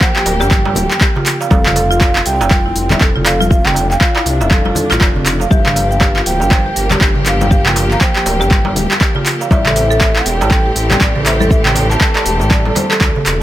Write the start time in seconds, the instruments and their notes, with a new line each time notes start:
Already playing: string section F3 A#3 G4
0.01 marimba C5, bansuri G5, kick, clap, cabasa
0.16 marimba G4, clap
0.26 detuned saw bass D1, marimba A#4, open hi-hat, darbuka tek, cabasa
0.40 detuned saw bass G1, marimba G4, darbuka ka, cabasa
0.51 marimba G4, kick, clap, high conga, cabasa
0.65 darbuka tek, high conga
0.75 detuned saw bass D1, open hi-hat, high conga, low conga, cabasa
0.91 marimba G5, clap, cabasa
1.01 marimba G4, kick, clap, cabasa
1.16 marimba F4, darbuka tek, darbuka dum
1.26 clap, open hi-hat, cabasa
1.41 marimba F5, darbuka ka, cabasa
1.50 detuned saw bass F1, string section C4, marimba A4, bansuri F5, kick, darbuka tek, high conga, cabasa
1.66 marimba F4, clap, darbuka dum
1.76 marimba A4, open hi-hat, darbuka ka, cabasa
1.91 marimba F4, cabasa
2.01 marimba F4, kick, clap, darbuka tek, cabasa
2.16 clap
2.26 detuned saw bass C2, bansuri G5, open hi-hat, cabasa
2.41 detuned saw bass F1, marimba F5, darbuka ka, darbuka tek, cabasa
2.51 marimba F4, kick, clap, high conga, cabasa
2.66 marimba E4
2.76 detuned saw bass F1, open hi-hat, cabasa
2.90 marimba E5, clap, high conga, darbuka tek, low conga, cabasa
3.01 detuned saw bass F1, marimba A4, kick, clap, cabasa
3.16 marimba F4, darbuka dum
3.25 marimba A4, bansuri F5, clap, open hi-hat, darbuka ka, darbuka tek, cabasa
3.40 marimba F4, high conga, cabasa
3.50 string section D4, marimba F4, bansuri F5, kick, high conga, cabasa
3.66 bansuri G5, clap, darbuka dum
3.74 open hi-hat, darbuka ka, darbuka tek, cabasa
3.90 marimba F5, bansuri G5, clap, cabasa
4.00 marimba F4, bansuri F5, kick, clap, cabasa
4.15 marimba E4, clap, darbuka tek
4.26 detuned saw bass C2, open hi-hat, cabasa
4.41 detuned saw bass F1, marimba E5, darbuka ka, cabasa
4.51 marimba A4, kick, clap, high conga, cabasa
4.65 marimba F4, high conga, darbuka tek
4.75 marimba A4, open hi-hat, high conga, low conga, cabasa
4.91 detuned saw bass A1, marimba F4, clap, cabasa
5.01 detuned saw bass F1, marimba F4, kick, clap, darbuka tek, cabasa
5.16 darbuka dum
5.26 clap, open hi-hat, cabasa
5.40 marimba F5, darbuka ka, cabasa
5.50 detuned saw bass G1, string section F3 A#3 G4, marimba G4, bansuri E5, kick, high conga, cabasa
5.64 bansuri F5, clap, darbuka tek, darbuka dum
5.76 open hi-hat, darbuka ka, cabasa
5.91 marimba G5, cabasa
6.01 marimba G4, kick, clap, darbuka tek, cabasa
6.16 marimba F4, clap
6.26 detuned saw bass D1, bansuri G5, open hi-hat, cabasa
6.40 detuned saw bass G1, marimba F5, darbuka ka, cabasa
6.51 marimba C5, kick, clap, high conga, darbuka tek, cabasa
6.66 marimba G4
6.76 detuned saw bass G1, marimba A#4, open hi-hat, cabasa
6.91 marimba G4, clap, high conga, darbuka tek, low conga, cabasa
7.01 detuned saw bass G1, marimba G4, kick, clap, cabasa
7.16 darbuka dum
7.26 bansuri F5, clap, open hi-hat, darbuka ka, cabasa
7.41 marimba G5, darbuka tek, high conga, cabasa
7.51 marimba G4, bansuri F5, kick, high conga, cabasa
7.65 marimba F4, bansuri G5, clap, darbuka dum
7.76 open hi-hat, darbuka ka, darbuka tek, cabasa
7.91 marimba F5, bansuri A#5, clap, cabasa
8.01 marimba C5, bansuri G5, kick, clap, cabasa
8.16 marimba G4, clap
8.26 detuned saw bass D1, marimba A#4, open hi-hat, darbuka tek, cabasa
8.40 detuned saw bass G1, marimba G4, darbuka ka, cabasa
8.51 kick, clap, high conga, cabasa
8.65 high conga, darbuka tek
8.76 detuned saw bass D1, open hi-hat, high conga, low conga, cabasa
8.91 marimba G5, clap, cabasa
9.01 marimba G4, kick, clap, cabasa
9.15 marimba F4, darbuka tek, darbuka dum
9.26 clap, open hi-hat, cabasa
9.40 marimba F5, darbuka ka, cabasa
9.50 detuned saw bass A1, string section E3 A3 C4 G4, marimba D5, bansuri E5, kick, high conga, darbuka tek, cabasa
9.65 marimba A4, clap, darbuka dum
9.76 marimba C5, open hi-hat, darbuka ka, cabasa
9.91 marimba A4, cabasa
10.01 kick, clap, darbuka tek, cabasa
10.16 clap
10.26 detuned saw bass E1, bansuri G5, open hi-hat, cabasa
10.41 detuned saw bass A1, marimba A5, darbuka ka, darbuka tek, cabasa
10.51 marimba A4, kick, clap, high conga, cabasa
10.66 marimba G4
10.76 detuned saw bass A1, open hi-hat, cabasa
10.90 marimba G5, clap, high conga, darbuka tek, low conga, cabasa
11.01 detuned saw bass A1, marimba D5, kick, clap, cabasa
11.16 marimba A4, darbuka dum
11.26 marimba C5, bansuri E5, clap, open hi-hat, darbuka ka, darbuka tek, cabasa
11.40 marimba A4, high conga, cabasa
11.50 marimba A4, bansuri E5, kick, high conga, cabasa
11.64 bansuri G5, clap, darbuka dum
11.75 open hi-hat, darbuka ka, darbuka tek, low conga, cabasa
11.90 bansuri A5, marimba A5, clap, cabasa
12.00 marimba A4, bansuri A5, kick, clap, cabasa
12.15 marimba G4, clap, darbuka tek
12.26 detuned saw bass E1, open hi-hat, cabasa
12.40 detuned saw bass A1, marimba G5, darbuka ka, cabasa
12.51 marimba D5, kick, clap, high conga, cabasa
12.65 marimba A4, darbuka tek, high conga
12.75 marimba C5, open hi-hat, darbuka ka, high conga, low conga, cabasa
12.90 marimba A4, clap, cabasa
13.01 detuned saw bass D2, marimba A4, kick, clap, darbuka tek, cabasa
13.16 darbuka dum
13.26 detuned saw bass E1, clap, open hi-hat, cabasa